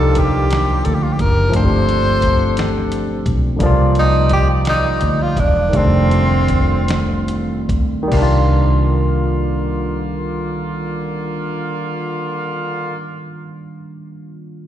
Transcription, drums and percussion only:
0, 0, Header, 1, 2, 480
1, 0, Start_track
1, 0, Tempo, 690449
1, 1069, Time_signature, 6, 3, 24, 8
1, 2990, Tempo, 716846
1, 3950, Tempo, 754717
1, 4430, Tempo, 814111
1, 5390, Tempo, 862069
1, 9040, End_track
2, 0, Start_track
2, 0, Title_t, "Drums"
2, 106, Note_on_c, 9, 42, 61
2, 116, Note_on_c, 9, 36, 99
2, 176, Note_off_c, 9, 42, 0
2, 186, Note_off_c, 9, 36, 0
2, 351, Note_on_c, 9, 42, 70
2, 366, Note_on_c, 9, 38, 108
2, 421, Note_off_c, 9, 42, 0
2, 436, Note_off_c, 9, 38, 0
2, 590, Note_on_c, 9, 42, 55
2, 660, Note_off_c, 9, 42, 0
2, 828, Note_on_c, 9, 36, 98
2, 829, Note_on_c, 9, 42, 49
2, 897, Note_off_c, 9, 36, 0
2, 899, Note_off_c, 9, 42, 0
2, 1067, Note_on_c, 9, 36, 107
2, 1067, Note_on_c, 9, 42, 71
2, 1136, Note_off_c, 9, 36, 0
2, 1137, Note_off_c, 9, 42, 0
2, 1312, Note_on_c, 9, 42, 47
2, 1381, Note_off_c, 9, 42, 0
2, 1545, Note_on_c, 9, 42, 61
2, 1553, Note_on_c, 9, 36, 97
2, 1614, Note_off_c, 9, 42, 0
2, 1623, Note_off_c, 9, 36, 0
2, 1787, Note_on_c, 9, 42, 66
2, 1801, Note_on_c, 9, 38, 104
2, 1856, Note_off_c, 9, 42, 0
2, 1871, Note_off_c, 9, 38, 0
2, 2028, Note_on_c, 9, 42, 63
2, 2097, Note_off_c, 9, 42, 0
2, 2265, Note_on_c, 9, 36, 101
2, 2267, Note_on_c, 9, 42, 50
2, 2334, Note_off_c, 9, 36, 0
2, 2336, Note_off_c, 9, 42, 0
2, 2504, Note_on_c, 9, 36, 114
2, 2504, Note_on_c, 9, 42, 73
2, 2573, Note_off_c, 9, 36, 0
2, 2573, Note_off_c, 9, 42, 0
2, 2747, Note_on_c, 9, 42, 45
2, 2817, Note_off_c, 9, 42, 0
2, 2986, Note_on_c, 9, 42, 59
2, 2994, Note_on_c, 9, 36, 94
2, 3053, Note_off_c, 9, 42, 0
2, 3061, Note_off_c, 9, 36, 0
2, 3225, Note_on_c, 9, 42, 62
2, 3239, Note_on_c, 9, 38, 101
2, 3292, Note_off_c, 9, 42, 0
2, 3306, Note_off_c, 9, 38, 0
2, 3463, Note_on_c, 9, 42, 58
2, 3530, Note_off_c, 9, 42, 0
2, 3702, Note_on_c, 9, 36, 100
2, 3705, Note_on_c, 9, 42, 52
2, 3769, Note_off_c, 9, 36, 0
2, 3772, Note_off_c, 9, 42, 0
2, 3948, Note_on_c, 9, 36, 124
2, 3949, Note_on_c, 9, 42, 68
2, 4012, Note_off_c, 9, 36, 0
2, 4013, Note_off_c, 9, 42, 0
2, 4191, Note_on_c, 9, 42, 48
2, 4255, Note_off_c, 9, 42, 0
2, 4427, Note_on_c, 9, 42, 59
2, 4434, Note_on_c, 9, 36, 94
2, 4486, Note_off_c, 9, 42, 0
2, 4493, Note_off_c, 9, 36, 0
2, 4662, Note_on_c, 9, 42, 69
2, 4675, Note_on_c, 9, 38, 113
2, 4721, Note_off_c, 9, 42, 0
2, 4734, Note_off_c, 9, 38, 0
2, 4898, Note_on_c, 9, 42, 58
2, 4956, Note_off_c, 9, 42, 0
2, 5138, Note_on_c, 9, 36, 96
2, 5141, Note_on_c, 9, 42, 51
2, 5197, Note_off_c, 9, 36, 0
2, 5200, Note_off_c, 9, 42, 0
2, 5389, Note_on_c, 9, 36, 110
2, 5389, Note_on_c, 9, 49, 83
2, 5445, Note_off_c, 9, 36, 0
2, 5445, Note_off_c, 9, 49, 0
2, 9040, End_track
0, 0, End_of_file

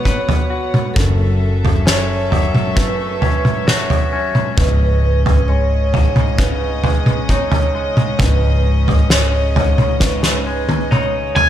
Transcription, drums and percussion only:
0, 0, Header, 1, 2, 480
1, 0, Start_track
1, 0, Key_signature, 4, "minor"
1, 0, Tempo, 906344
1, 508, Time_signature, 4, 2, 24, 8
1, 6086, End_track
2, 0, Start_track
2, 0, Title_t, "Drums"
2, 28, Note_on_c, 9, 36, 53
2, 81, Note_off_c, 9, 36, 0
2, 151, Note_on_c, 9, 43, 70
2, 204, Note_off_c, 9, 43, 0
2, 392, Note_on_c, 9, 47, 59
2, 445, Note_off_c, 9, 47, 0
2, 509, Note_on_c, 9, 36, 94
2, 512, Note_on_c, 9, 43, 75
2, 562, Note_off_c, 9, 36, 0
2, 565, Note_off_c, 9, 43, 0
2, 872, Note_on_c, 9, 43, 66
2, 925, Note_off_c, 9, 43, 0
2, 990, Note_on_c, 9, 38, 62
2, 1043, Note_off_c, 9, 38, 0
2, 1229, Note_on_c, 9, 43, 66
2, 1282, Note_off_c, 9, 43, 0
2, 1348, Note_on_c, 9, 47, 61
2, 1401, Note_off_c, 9, 47, 0
2, 1465, Note_on_c, 9, 36, 85
2, 1518, Note_off_c, 9, 36, 0
2, 1705, Note_on_c, 9, 43, 67
2, 1758, Note_off_c, 9, 43, 0
2, 1827, Note_on_c, 9, 47, 65
2, 1880, Note_off_c, 9, 47, 0
2, 1948, Note_on_c, 9, 38, 60
2, 1948, Note_on_c, 9, 47, 58
2, 2001, Note_off_c, 9, 38, 0
2, 2001, Note_off_c, 9, 47, 0
2, 2066, Note_on_c, 9, 43, 70
2, 2119, Note_off_c, 9, 43, 0
2, 2303, Note_on_c, 9, 47, 57
2, 2356, Note_off_c, 9, 47, 0
2, 2423, Note_on_c, 9, 36, 85
2, 2424, Note_on_c, 9, 43, 73
2, 2476, Note_off_c, 9, 36, 0
2, 2477, Note_off_c, 9, 43, 0
2, 2785, Note_on_c, 9, 43, 68
2, 2838, Note_off_c, 9, 43, 0
2, 3145, Note_on_c, 9, 43, 65
2, 3198, Note_off_c, 9, 43, 0
2, 3262, Note_on_c, 9, 47, 63
2, 3315, Note_off_c, 9, 47, 0
2, 3381, Note_on_c, 9, 36, 80
2, 3434, Note_off_c, 9, 36, 0
2, 3620, Note_on_c, 9, 43, 68
2, 3673, Note_off_c, 9, 43, 0
2, 3740, Note_on_c, 9, 47, 68
2, 3793, Note_off_c, 9, 47, 0
2, 3861, Note_on_c, 9, 36, 53
2, 3914, Note_off_c, 9, 36, 0
2, 3980, Note_on_c, 9, 43, 71
2, 4033, Note_off_c, 9, 43, 0
2, 4220, Note_on_c, 9, 47, 61
2, 4273, Note_off_c, 9, 47, 0
2, 4337, Note_on_c, 9, 43, 70
2, 4340, Note_on_c, 9, 36, 100
2, 4390, Note_off_c, 9, 43, 0
2, 4393, Note_off_c, 9, 36, 0
2, 4703, Note_on_c, 9, 43, 65
2, 4756, Note_off_c, 9, 43, 0
2, 4821, Note_on_c, 9, 38, 66
2, 4874, Note_off_c, 9, 38, 0
2, 5064, Note_on_c, 9, 43, 67
2, 5117, Note_off_c, 9, 43, 0
2, 5180, Note_on_c, 9, 47, 64
2, 5233, Note_off_c, 9, 47, 0
2, 5298, Note_on_c, 9, 38, 44
2, 5301, Note_on_c, 9, 36, 84
2, 5351, Note_off_c, 9, 38, 0
2, 5354, Note_off_c, 9, 36, 0
2, 5418, Note_on_c, 9, 38, 45
2, 5471, Note_off_c, 9, 38, 0
2, 5659, Note_on_c, 9, 48, 53
2, 5712, Note_off_c, 9, 48, 0
2, 5783, Note_on_c, 9, 47, 63
2, 5836, Note_off_c, 9, 47, 0
2, 6018, Note_on_c, 9, 43, 77
2, 6071, Note_off_c, 9, 43, 0
2, 6086, End_track
0, 0, End_of_file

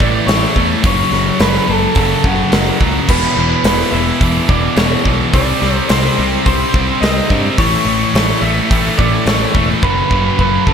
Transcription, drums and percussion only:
0, 0, Header, 1, 2, 480
1, 0, Start_track
1, 0, Tempo, 561272
1, 721, Time_signature, 4, 2, 24, 8
1, 9181, End_track
2, 0, Start_track
2, 0, Title_t, "Drums"
2, 2, Note_on_c, 9, 36, 84
2, 88, Note_off_c, 9, 36, 0
2, 242, Note_on_c, 9, 46, 63
2, 250, Note_on_c, 9, 38, 116
2, 327, Note_off_c, 9, 46, 0
2, 336, Note_off_c, 9, 38, 0
2, 479, Note_on_c, 9, 36, 82
2, 565, Note_off_c, 9, 36, 0
2, 716, Note_on_c, 9, 46, 65
2, 717, Note_on_c, 9, 36, 127
2, 801, Note_off_c, 9, 46, 0
2, 803, Note_off_c, 9, 36, 0
2, 963, Note_on_c, 9, 38, 32
2, 1049, Note_off_c, 9, 38, 0
2, 1193, Note_on_c, 9, 46, 66
2, 1202, Note_on_c, 9, 38, 127
2, 1279, Note_off_c, 9, 46, 0
2, 1287, Note_off_c, 9, 38, 0
2, 1320, Note_on_c, 9, 38, 36
2, 1405, Note_off_c, 9, 38, 0
2, 1667, Note_on_c, 9, 46, 56
2, 1676, Note_on_c, 9, 36, 107
2, 1752, Note_off_c, 9, 46, 0
2, 1761, Note_off_c, 9, 36, 0
2, 1917, Note_on_c, 9, 36, 91
2, 2002, Note_off_c, 9, 36, 0
2, 2155, Note_on_c, 9, 46, 72
2, 2163, Note_on_c, 9, 38, 108
2, 2240, Note_off_c, 9, 46, 0
2, 2249, Note_off_c, 9, 38, 0
2, 2400, Note_on_c, 9, 36, 86
2, 2485, Note_off_c, 9, 36, 0
2, 2640, Note_on_c, 9, 36, 127
2, 2641, Note_on_c, 9, 49, 121
2, 2726, Note_off_c, 9, 36, 0
2, 2726, Note_off_c, 9, 49, 0
2, 3115, Note_on_c, 9, 46, 66
2, 3124, Note_on_c, 9, 38, 111
2, 3201, Note_off_c, 9, 46, 0
2, 3209, Note_off_c, 9, 38, 0
2, 3252, Note_on_c, 9, 38, 38
2, 3338, Note_off_c, 9, 38, 0
2, 3600, Note_on_c, 9, 36, 102
2, 3600, Note_on_c, 9, 46, 48
2, 3685, Note_off_c, 9, 46, 0
2, 3686, Note_off_c, 9, 36, 0
2, 3840, Note_on_c, 9, 36, 91
2, 3925, Note_off_c, 9, 36, 0
2, 4075, Note_on_c, 9, 46, 59
2, 4084, Note_on_c, 9, 38, 119
2, 4161, Note_off_c, 9, 46, 0
2, 4169, Note_off_c, 9, 38, 0
2, 4323, Note_on_c, 9, 36, 90
2, 4408, Note_off_c, 9, 36, 0
2, 4562, Note_on_c, 9, 46, 69
2, 4563, Note_on_c, 9, 36, 119
2, 4647, Note_off_c, 9, 46, 0
2, 4649, Note_off_c, 9, 36, 0
2, 4813, Note_on_c, 9, 38, 35
2, 4898, Note_off_c, 9, 38, 0
2, 5039, Note_on_c, 9, 46, 66
2, 5047, Note_on_c, 9, 38, 115
2, 5124, Note_off_c, 9, 46, 0
2, 5133, Note_off_c, 9, 38, 0
2, 5177, Note_on_c, 9, 38, 36
2, 5263, Note_off_c, 9, 38, 0
2, 5525, Note_on_c, 9, 36, 99
2, 5526, Note_on_c, 9, 46, 61
2, 5611, Note_off_c, 9, 36, 0
2, 5611, Note_off_c, 9, 46, 0
2, 5765, Note_on_c, 9, 36, 99
2, 5851, Note_off_c, 9, 36, 0
2, 6011, Note_on_c, 9, 46, 66
2, 6019, Note_on_c, 9, 38, 114
2, 6096, Note_off_c, 9, 46, 0
2, 6105, Note_off_c, 9, 38, 0
2, 6245, Note_on_c, 9, 36, 86
2, 6331, Note_off_c, 9, 36, 0
2, 6485, Note_on_c, 9, 36, 126
2, 6486, Note_on_c, 9, 46, 80
2, 6571, Note_off_c, 9, 36, 0
2, 6571, Note_off_c, 9, 46, 0
2, 6971, Note_on_c, 9, 46, 65
2, 6980, Note_on_c, 9, 38, 105
2, 7057, Note_off_c, 9, 46, 0
2, 7065, Note_off_c, 9, 38, 0
2, 7448, Note_on_c, 9, 36, 110
2, 7452, Note_on_c, 9, 46, 58
2, 7533, Note_off_c, 9, 36, 0
2, 7538, Note_off_c, 9, 46, 0
2, 7686, Note_on_c, 9, 36, 94
2, 7772, Note_off_c, 9, 36, 0
2, 7924, Note_on_c, 9, 46, 56
2, 7932, Note_on_c, 9, 38, 108
2, 8009, Note_off_c, 9, 46, 0
2, 8018, Note_off_c, 9, 38, 0
2, 8165, Note_on_c, 9, 36, 91
2, 8250, Note_off_c, 9, 36, 0
2, 8405, Note_on_c, 9, 36, 117
2, 8491, Note_off_c, 9, 36, 0
2, 8645, Note_on_c, 9, 36, 73
2, 8730, Note_off_c, 9, 36, 0
2, 8885, Note_on_c, 9, 36, 72
2, 8970, Note_off_c, 9, 36, 0
2, 9124, Note_on_c, 9, 36, 77
2, 9181, Note_off_c, 9, 36, 0
2, 9181, End_track
0, 0, End_of_file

